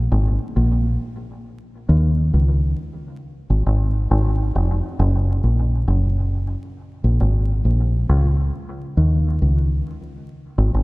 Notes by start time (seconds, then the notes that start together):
0.12 G#1
0.56 A#1
1.89 D#2
2.34 C#2
3.50 G#1
3.66 G#1
4.11 G#1
4.55 F1
4.99 F#1
5.44 A#1
5.88 F#1
7.04 A#1
7.21 G#1
7.65 A#1
8.09 C#2
8.97 D#2
9.42 C#2
10.58 G#1
10.74 G#1